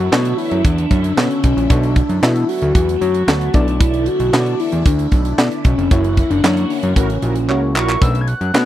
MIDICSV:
0, 0, Header, 1, 7, 480
1, 0, Start_track
1, 0, Key_signature, 2, "minor"
1, 0, Tempo, 526316
1, 1550, Time_signature, 4, 2, 24, 8
1, 7891, End_track
2, 0, Start_track
2, 0, Title_t, "Analog polysynth"
2, 0, Program_c, 0, 90
2, 6348, Note_on_c, 0, 64, 97
2, 6349, Note_on_c, 0, 66, 106
2, 6349, Note_on_c, 0, 70, 109
2, 6451, Note_off_c, 0, 64, 0
2, 6451, Note_off_c, 0, 66, 0
2, 6451, Note_off_c, 0, 70, 0
2, 6591, Note_on_c, 0, 64, 85
2, 6594, Note_on_c, 0, 66, 80
2, 6594, Note_on_c, 0, 70, 93
2, 6693, Note_off_c, 0, 64, 0
2, 6695, Note_off_c, 0, 66, 0
2, 6695, Note_off_c, 0, 70, 0
2, 6834, Note_on_c, 0, 64, 90
2, 6834, Note_on_c, 0, 66, 88
2, 6834, Note_on_c, 0, 70, 91
2, 6934, Note_off_c, 0, 66, 0
2, 6934, Note_off_c, 0, 70, 0
2, 6935, Note_off_c, 0, 64, 0
2, 7071, Note_on_c, 0, 64, 104
2, 7071, Note_on_c, 0, 66, 100
2, 7071, Note_on_c, 0, 70, 108
2, 7275, Note_off_c, 0, 64, 0
2, 7275, Note_off_c, 0, 66, 0
2, 7275, Note_off_c, 0, 70, 0
2, 7891, End_track
3, 0, Start_track
3, 0, Title_t, "FM electric piano"
3, 0, Program_c, 1, 5
3, 108, Note_on_c, 1, 59, 87
3, 111, Note_on_c, 1, 62, 77
3, 113, Note_on_c, 1, 66, 76
3, 114, Note_on_c, 1, 69, 80
3, 117, Note_on_c, 1, 73, 85
3, 523, Note_off_c, 1, 59, 0
3, 524, Note_off_c, 1, 62, 0
3, 525, Note_off_c, 1, 66, 0
3, 526, Note_off_c, 1, 69, 0
3, 527, Note_off_c, 1, 73, 0
3, 1062, Note_on_c, 1, 59, 66
3, 1065, Note_on_c, 1, 62, 60
3, 1067, Note_on_c, 1, 66, 65
3, 1069, Note_on_c, 1, 69, 56
3, 1070, Note_on_c, 1, 73, 71
3, 1273, Note_off_c, 1, 59, 0
3, 1275, Note_off_c, 1, 62, 0
3, 1276, Note_off_c, 1, 66, 0
3, 1277, Note_off_c, 1, 69, 0
3, 1277, Note_off_c, 1, 73, 0
3, 1546, Note_on_c, 1, 59, 86
3, 1549, Note_on_c, 1, 62, 77
3, 1549, Note_on_c, 1, 66, 75
3, 1551, Note_on_c, 1, 69, 78
3, 1555, Note_on_c, 1, 73, 89
3, 1755, Note_off_c, 1, 59, 0
3, 1757, Note_off_c, 1, 62, 0
3, 1757, Note_off_c, 1, 66, 0
3, 1758, Note_off_c, 1, 69, 0
3, 1760, Note_off_c, 1, 73, 0
3, 2028, Note_on_c, 1, 59, 86
3, 2029, Note_on_c, 1, 62, 80
3, 2031, Note_on_c, 1, 66, 75
3, 2032, Note_on_c, 1, 69, 78
3, 2033, Note_on_c, 1, 76, 85
3, 2443, Note_off_c, 1, 59, 0
3, 2443, Note_off_c, 1, 62, 0
3, 2445, Note_off_c, 1, 66, 0
3, 2445, Note_off_c, 1, 69, 0
3, 2445, Note_off_c, 1, 76, 0
3, 2988, Note_on_c, 1, 59, 71
3, 2989, Note_on_c, 1, 62, 60
3, 2991, Note_on_c, 1, 66, 63
3, 2996, Note_on_c, 1, 69, 63
3, 2996, Note_on_c, 1, 73, 77
3, 3196, Note_off_c, 1, 59, 0
3, 3197, Note_off_c, 1, 62, 0
3, 3198, Note_off_c, 1, 66, 0
3, 3200, Note_off_c, 1, 69, 0
3, 3200, Note_off_c, 1, 73, 0
3, 3227, Note_on_c, 1, 59, 81
3, 3228, Note_on_c, 1, 62, 82
3, 3230, Note_on_c, 1, 64, 70
3, 3233, Note_on_c, 1, 69, 69
3, 3233, Note_on_c, 1, 74, 93
3, 3805, Note_off_c, 1, 59, 0
3, 3806, Note_off_c, 1, 62, 0
3, 3806, Note_off_c, 1, 64, 0
3, 3808, Note_off_c, 1, 69, 0
3, 3808, Note_off_c, 1, 74, 0
3, 3947, Note_on_c, 1, 59, 87
3, 3948, Note_on_c, 1, 62, 77
3, 3948, Note_on_c, 1, 64, 75
3, 3951, Note_on_c, 1, 69, 76
3, 3953, Note_on_c, 1, 73, 73
3, 4009, Note_off_c, 1, 73, 0
3, 4010, Note_on_c, 1, 74, 90
3, 4363, Note_off_c, 1, 59, 0
3, 4363, Note_off_c, 1, 62, 0
3, 4363, Note_off_c, 1, 64, 0
3, 4364, Note_off_c, 1, 69, 0
3, 4394, Note_off_c, 1, 74, 0
3, 4912, Note_on_c, 1, 59, 66
3, 4913, Note_on_c, 1, 62, 60
3, 4915, Note_on_c, 1, 64, 67
3, 4916, Note_on_c, 1, 69, 63
3, 4920, Note_on_c, 1, 74, 82
3, 5118, Note_off_c, 1, 59, 0
3, 5119, Note_off_c, 1, 62, 0
3, 5120, Note_off_c, 1, 64, 0
3, 5120, Note_off_c, 1, 69, 0
3, 5122, Note_off_c, 1, 74, 0
3, 5391, Note_on_c, 1, 58, 83
3, 5391, Note_on_c, 1, 61, 77
3, 5394, Note_on_c, 1, 64, 73
3, 5394, Note_on_c, 1, 66, 79
3, 5398, Note_on_c, 1, 73, 91
3, 5598, Note_off_c, 1, 58, 0
3, 5598, Note_off_c, 1, 61, 0
3, 5599, Note_off_c, 1, 64, 0
3, 5599, Note_off_c, 1, 66, 0
3, 5601, Note_off_c, 1, 73, 0
3, 5872, Note_on_c, 1, 58, 86
3, 5874, Note_on_c, 1, 61, 78
3, 5875, Note_on_c, 1, 64, 72
3, 5875, Note_on_c, 1, 66, 75
3, 5879, Note_on_c, 1, 73, 89
3, 6285, Note_off_c, 1, 58, 0
3, 6286, Note_off_c, 1, 61, 0
3, 6286, Note_off_c, 1, 64, 0
3, 6287, Note_off_c, 1, 66, 0
3, 6289, Note_off_c, 1, 73, 0
3, 6830, Note_on_c, 1, 61, 75
3, 6831, Note_on_c, 1, 58, 88
3, 6834, Note_on_c, 1, 64, 75
3, 6835, Note_on_c, 1, 66, 75
3, 6839, Note_on_c, 1, 73, 87
3, 7037, Note_off_c, 1, 61, 0
3, 7038, Note_off_c, 1, 58, 0
3, 7039, Note_off_c, 1, 64, 0
3, 7039, Note_off_c, 1, 66, 0
3, 7042, Note_off_c, 1, 73, 0
3, 7308, Note_on_c, 1, 57, 80
3, 7308, Note_on_c, 1, 61, 78
3, 7312, Note_on_c, 1, 62, 70
3, 7312, Note_on_c, 1, 66, 73
3, 7314, Note_on_c, 1, 71, 89
3, 7516, Note_off_c, 1, 57, 0
3, 7516, Note_off_c, 1, 61, 0
3, 7518, Note_off_c, 1, 62, 0
3, 7518, Note_off_c, 1, 66, 0
3, 7519, Note_off_c, 1, 71, 0
3, 7788, Note_on_c, 1, 57, 84
3, 7789, Note_on_c, 1, 61, 83
3, 7789, Note_on_c, 1, 62, 80
3, 7793, Note_on_c, 1, 66, 73
3, 7793, Note_on_c, 1, 71, 91
3, 7891, Note_off_c, 1, 57, 0
3, 7891, Note_off_c, 1, 61, 0
3, 7891, Note_off_c, 1, 62, 0
3, 7891, Note_off_c, 1, 66, 0
3, 7891, Note_off_c, 1, 71, 0
3, 7891, End_track
4, 0, Start_track
4, 0, Title_t, "Soft synth lead"
4, 0, Program_c, 2, 80
4, 0, Note_on_c, 2, 66, 114
4, 342, Note_on_c, 2, 64, 98
4, 355, Note_off_c, 2, 66, 0
4, 588, Note_on_c, 2, 62, 86
4, 601, Note_off_c, 2, 64, 0
4, 1066, Note_on_c, 2, 61, 88
4, 1080, Note_off_c, 2, 62, 0
4, 1299, Note_off_c, 2, 61, 0
4, 1304, Note_on_c, 2, 61, 100
4, 1544, Note_on_c, 2, 62, 96
4, 1558, Note_off_c, 2, 61, 0
4, 2028, Note_on_c, 2, 64, 99
4, 2042, Note_off_c, 2, 62, 0
4, 2267, Note_on_c, 2, 66, 120
4, 2281, Note_off_c, 2, 64, 0
4, 2742, Note_off_c, 2, 66, 0
4, 2747, Note_on_c, 2, 66, 120
4, 3230, Note_on_c, 2, 62, 101
4, 3244, Note_off_c, 2, 66, 0
4, 3469, Note_on_c, 2, 64, 97
4, 3482, Note_off_c, 2, 62, 0
4, 3715, Note_on_c, 2, 66, 113
4, 3729, Note_off_c, 2, 64, 0
4, 4196, Note_on_c, 2, 64, 94
4, 4209, Note_off_c, 2, 66, 0
4, 4438, Note_on_c, 2, 62, 95
4, 4451, Note_off_c, 2, 64, 0
4, 5151, Note_off_c, 2, 62, 0
4, 5156, Note_on_c, 2, 61, 94
4, 5393, Note_on_c, 2, 64, 107
4, 5406, Note_off_c, 2, 61, 0
4, 5629, Note_off_c, 2, 64, 0
4, 5634, Note_on_c, 2, 64, 95
4, 5753, Note_on_c, 2, 62, 104
4, 5767, Note_off_c, 2, 64, 0
4, 6112, Note_on_c, 2, 61, 85
4, 6126, Note_off_c, 2, 62, 0
4, 7071, Note_off_c, 2, 61, 0
4, 7077, Note_on_c, 2, 85, 106
4, 7315, Note_on_c, 2, 88, 112
4, 7328, Note_off_c, 2, 85, 0
4, 7489, Note_on_c, 2, 92, 82
4, 7502, Note_off_c, 2, 88, 0
4, 7549, Note_on_c, 2, 90, 114
4, 7562, Note_off_c, 2, 92, 0
4, 7891, Note_off_c, 2, 90, 0
4, 7891, End_track
5, 0, Start_track
5, 0, Title_t, "String machine"
5, 0, Program_c, 3, 50
5, 0, Note_on_c, 3, 50, 85
5, 0, Note_on_c, 3, 57, 72
5, 0, Note_on_c, 3, 64, 84
5, 3194, Note_off_c, 3, 50, 0
5, 3195, Note_off_c, 3, 64, 0
5, 3233, Note_on_c, 3, 50, 77
5, 3236, Note_on_c, 3, 64, 86
5, 5354, Note_off_c, 3, 57, 0
5, 5370, Note_off_c, 3, 50, 0
5, 5371, Note_off_c, 3, 64, 0
5, 5395, Note_on_c, 3, 52, 77
5, 5395, Note_on_c, 3, 58, 71
5, 5397, Note_on_c, 3, 66, 85
5, 7294, Note_off_c, 3, 52, 0
5, 7294, Note_off_c, 3, 58, 0
5, 7295, Note_off_c, 3, 66, 0
5, 7891, End_track
6, 0, Start_track
6, 0, Title_t, "Analog synth bass"
6, 0, Program_c, 4, 38
6, 109, Note_on_c, 4, 47, 114
6, 309, Note_off_c, 4, 47, 0
6, 470, Note_on_c, 4, 42, 91
6, 570, Note_off_c, 4, 42, 0
6, 589, Note_on_c, 4, 40, 97
6, 789, Note_off_c, 4, 40, 0
6, 827, Note_on_c, 4, 42, 102
6, 1028, Note_off_c, 4, 42, 0
6, 1070, Note_on_c, 4, 47, 105
6, 1170, Note_off_c, 4, 47, 0
6, 1311, Note_on_c, 4, 35, 99
6, 1410, Note_off_c, 4, 35, 0
6, 1430, Note_on_c, 4, 34, 91
6, 1530, Note_off_c, 4, 34, 0
6, 1550, Note_on_c, 4, 35, 119
6, 1849, Note_off_c, 4, 35, 0
6, 1910, Note_on_c, 4, 42, 90
6, 2010, Note_off_c, 4, 42, 0
6, 2030, Note_on_c, 4, 47, 110
6, 2229, Note_off_c, 4, 47, 0
6, 2389, Note_on_c, 4, 38, 96
6, 2489, Note_off_c, 4, 38, 0
6, 2508, Note_on_c, 4, 40, 91
6, 2708, Note_off_c, 4, 40, 0
6, 2749, Note_on_c, 4, 42, 102
6, 2949, Note_off_c, 4, 42, 0
6, 2987, Note_on_c, 4, 38, 101
6, 3188, Note_off_c, 4, 38, 0
6, 3230, Note_on_c, 4, 35, 106
6, 3728, Note_off_c, 4, 35, 0
6, 3829, Note_on_c, 4, 35, 98
6, 3929, Note_off_c, 4, 35, 0
6, 3948, Note_on_c, 4, 47, 102
6, 4148, Note_off_c, 4, 47, 0
6, 4309, Note_on_c, 4, 40, 79
6, 4409, Note_off_c, 4, 40, 0
6, 4427, Note_on_c, 4, 38, 93
6, 4628, Note_off_c, 4, 38, 0
6, 4668, Note_on_c, 4, 35, 91
6, 4868, Note_off_c, 4, 35, 0
6, 4908, Note_on_c, 4, 47, 106
6, 5008, Note_off_c, 4, 47, 0
6, 5151, Note_on_c, 4, 35, 103
6, 5250, Note_off_c, 4, 35, 0
6, 5271, Note_on_c, 4, 29, 101
6, 5370, Note_off_c, 4, 29, 0
6, 5390, Note_on_c, 4, 30, 125
6, 5690, Note_off_c, 4, 30, 0
6, 5750, Note_on_c, 4, 30, 103
6, 5850, Note_off_c, 4, 30, 0
6, 5868, Note_on_c, 4, 42, 111
6, 6069, Note_off_c, 4, 42, 0
6, 6230, Note_on_c, 4, 42, 94
6, 6330, Note_off_c, 4, 42, 0
6, 6348, Note_on_c, 4, 33, 98
6, 6549, Note_off_c, 4, 33, 0
6, 6589, Note_on_c, 4, 34, 96
6, 6828, Note_on_c, 4, 37, 93
6, 6841, Note_off_c, 4, 34, 0
6, 7068, Note_on_c, 4, 34, 99
6, 7081, Note_off_c, 4, 37, 0
6, 7268, Note_off_c, 4, 34, 0
6, 7308, Note_on_c, 4, 35, 118
6, 7608, Note_off_c, 4, 35, 0
6, 7669, Note_on_c, 4, 42, 95
6, 7769, Note_off_c, 4, 42, 0
6, 7788, Note_on_c, 4, 47, 112
6, 7891, Note_off_c, 4, 47, 0
6, 7891, End_track
7, 0, Start_track
7, 0, Title_t, "Drums"
7, 116, Note_on_c, 9, 38, 124
7, 120, Note_on_c, 9, 39, 106
7, 208, Note_off_c, 9, 38, 0
7, 211, Note_off_c, 9, 39, 0
7, 229, Note_on_c, 9, 42, 59
7, 320, Note_off_c, 9, 42, 0
7, 350, Note_on_c, 9, 46, 73
7, 441, Note_off_c, 9, 46, 0
7, 468, Note_on_c, 9, 42, 57
7, 559, Note_off_c, 9, 42, 0
7, 589, Note_on_c, 9, 36, 113
7, 591, Note_on_c, 9, 42, 88
7, 680, Note_off_c, 9, 36, 0
7, 682, Note_off_c, 9, 42, 0
7, 714, Note_on_c, 9, 42, 59
7, 805, Note_off_c, 9, 42, 0
7, 827, Note_on_c, 9, 42, 64
7, 829, Note_on_c, 9, 36, 94
7, 918, Note_off_c, 9, 42, 0
7, 920, Note_off_c, 9, 36, 0
7, 950, Note_on_c, 9, 42, 63
7, 1041, Note_off_c, 9, 42, 0
7, 1076, Note_on_c, 9, 38, 116
7, 1079, Note_on_c, 9, 39, 90
7, 1167, Note_off_c, 9, 38, 0
7, 1170, Note_off_c, 9, 39, 0
7, 1192, Note_on_c, 9, 42, 55
7, 1283, Note_off_c, 9, 42, 0
7, 1309, Note_on_c, 9, 42, 83
7, 1312, Note_on_c, 9, 36, 103
7, 1400, Note_off_c, 9, 42, 0
7, 1403, Note_off_c, 9, 36, 0
7, 1438, Note_on_c, 9, 42, 60
7, 1529, Note_off_c, 9, 42, 0
7, 1551, Note_on_c, 9, 36, 119
7, 1552, Note_on_c, 9, 42, 93
7, 1643, Note_off_c, 9, 36, 0
7, 1643, Note_off_c, 9, 42, 0
7, 1672, Note_on_c, 9, 42, 53
7, 1763, Note_off_c, 9, 42, 0
7, 1787, Note_on_c, 9, 42, 73
7, 1788, Note_on_c, 9, 36, 105
7, 1878, Note_off_c, 9, 42, 0
7, 1880, Note_off_c, 9, 36, 0
7, 1911, Note_on_c, 9, 42, 60
7, 2002, Note_off_c, 9, 42, 0
7, 2036, Note_on_c, 9, 38, 114
7, 2039, Note_on_c, 9, 39, 105
7, 2127, Note_off_c, 9, 38, 0
7, 2131, Note_off_c, 9, 39, 0
7, 2149, Note_on_c, 9, 42, 61
7, 2240, Note_off_c, 9, 42, 0
7, 2271, Note_on_c, 9, 46, 75
7, 2362, Note_off_c, 9, 46, 0
7, 2385, Note_on_c, 9, 42, 54
7, 2477, Note_off_c, 9, 42, 0
7, 2508, Note_on_c, 9, 36, 114
7, 2511, Note_on_c, 9, 42, 83
7, 2599, Note_off_c, 9, 36, 0
7, 2603, Note_off_c, 9, 42, 0
7, 2635, Note_on_c, 9, 42, 57
7, 2727, Note_off_c, 9, 42, 0
7, 2750, Note_on_c, 9, 42, 68
7, 2842, Note_off_c, 9, 42, 0
7, 2868, Note_on_c, 9, 42, 62
7, 2959, Note_off_c, 9, 42, 0
7, 2996, Note_on_c, 9, 38, 110
7, 2999, Note_on_c, 9, 39, 94
7, 3087, Note_off_c, 9, 38, 0
7, 3090, Note_off_c, 9, 39, 0
7, 3112, Note_on_c, 9, 42, 54
7, 3203, Note_off_c, 9, 42, 0
7, 3226, Note_on_c, 9, 42, 76
7, 3230, Note_on_c, 9, 36, 105
7, 3317, Note_off_c, 9, 42, 0
7, 3321, Note_off_c, 9, 36, 0
7, 3355, Note_on_c, 9, 42, 55
7, 3446, Note_off_c, 9, 42, 0
7, 3470, Note_on_c, 9, 36, 127
7, 3471, Note_on_c, 9, 42, 98
7, 3562, Note_off_c, 9, 36, 0
7, 3562, Note_off_c, 9, 42, 0
7, 3590, Note_on_c, 9, 42, 54
7, 3681, Note_off_c, 9, 42, 0
7, 3704, Note_on_c, 9, 42, 79
7, 3795, Note_off_c, 9, 42, 0
7, 3829, Note_on_c, 9, 42, 60
7, 3920, Note_off_c, 9, 42, 0
7, 3956, Note_on_c, 9, 38, 123
7, 3959, Note_on_c, 9, 39, 99
7, 4047, Note_off_c, 9, 38, 0
7, 4050, Note_off_c, 9, 39, 0
7, 4069, Note_on_c, 9, 42, 54
7, 4160, Note_off_c, 9, 42, 0
7, 4192, Note_on_c, 9, 46, 81
7, 4283, Note_off_c, 9, 46, 0
7, 4307, Note_on_c, 9, 42, 60
7, 4398, Note_off_c, 9, 42, 0
7, 4429, Note_on_c, 9, 36, 117
7, 4432, Note_on_c, 9, 42, 88
7, 4520, Note_off_c, 9, 36, 0
7, 4523, Note_off_c, 9, 42, 0
7, 4552, Note_on_c, 9, 42, 54
7, 4643, Note_off_c, 9, 42, 0
7, 4666, Note_on_c, 9, 42, 62
7, 4668, Note_on_c, 9, 36, 86
7, 4757, Note_off_c, 9, 42, 0
7, 4760, Note_off_c, 9, 36, 0
7, 4787, Note_on_c, 9, 42, 59
7, 4878, Note_off_c, 9, 42, 0
7, 4912, Note_on_c, 9, 38, 113
7, 4915, Note_on_c, 9, 39, 92
7, 5003, Note_off_c, 9, 38, 0
7, 5006, Note_off_c, 9, 39, 0
7, 5029, Note_on_c, 9, 42, 53
7, 5120, Note_off_c, 9, 42, 0
7, 5148, Note_on_c, 9, 42, 78
7, 5152, Note_on_c, 9, 36, 115
7, 5239, Note_off_c, 9, 42, 0
7, 5243, Note_off_c, 9, 36, 0
7, 5278, Note_on_c, 9, 42, 56
7, 5369, Note_off_c, 9, 42, 0
7, 5392, Note_on_c, 9, 36, 127
7, 5392, Note_on_c, 9, 42, 91
7, 5483, Note_off_c, 9, 36, 0
7, 5483, Note_off_c, 9, 42, 0
7, 5512, Note_on_c, 9, 42, 50
7, 5603, Note_off_c, 9, 42, 0
7, 5630, Note_on_c, 9, 36, 98
7, 5630, Note_on_c, 9, 42, 70
7, 5721, Note_off_c, 9, 36, 0
7, 5722, Note_off_c, 9, 42, 0
7, 5752, Note_on_c, 9, 42, 59
7, 5843, Note_off_c, 9, 42, 0
7, 5876, Note_on_c, 9, 38, 122
7, 5879, Note_on_c, 9, 39, 104
7, 5967, Note_off_c, 9, 38, 0
7, 5971, Note_off_c, 9, 39, 0
7, 5992, Note_on_c, 9, 42, 57
7, 6083, Note_off_c, 9, 42, 0
7, 6113, Note_on_c, 9, 46, 75
7, 6204, Note_off_c, 9, 46, 0
7, 6228, Note_on_c, 9, 42, 54
7, 6319, Note_off_c, 9, 42, 0
7, 6350, Note_on_c, 9, 36, 106
7, 6353, Note_on_c, 9, 42, 89
7, 6441, Note_off_c, 9, 36, 0
7, 6444, Note_off_c, 9, 42, 0
7, 6474, Note_on_c, 9, 42, 53
7, 6565, Note_off_c, 9, 42, 0
7, 6588, Note_on_c, 9, 42, 66
7, 6679, Note_off_c, 9, 42, 0
7, 6708, Note_on_c, 9, 42, 60
7, 6799, Note_off_c, 9, 42, 0
7, 6835, Note_on_c, 9, 39, 62
7, 6927, Note_off_c, 9, 39, 0
7, 7077, Note_on_c, 9, 39, 103
7, 7168, Note_off_c, 9, 39, 0
7, 7199, Note_on_c, 9, 39, 97
7, 7290, Note_off_c, 9, 39, 0
7, 7311, Note_on_c, 9, 36, 124
7, 7312, Note_on_c, 9, 42, 88
7, 7403, Note_off_c, 9, 36, 0
7, 7403, Note_off_c, 9, 42, 0
7, 7431, Note_on_c, 9, 42, 55
7, 7522, Note_off_c, 9, 42, 0
7, 7547, Note_on_c, 9, 42, 71
7, 7638, Note_off_c, 9, 42, 0
7, 7671, Note_on_c, 9, 42, 55
7, 7762, Note_off_c, 9, 42, 0
7, 7797, Note_on_c, 9, 38, 122
7, 7800, Note_on_c, 9, 39, 104
7, 7888, Note_off_c, 9, 38, 0
7, 7891, Note_off_c, 9, 39, 0
7, 7891, End_track
0, 0, End_of_file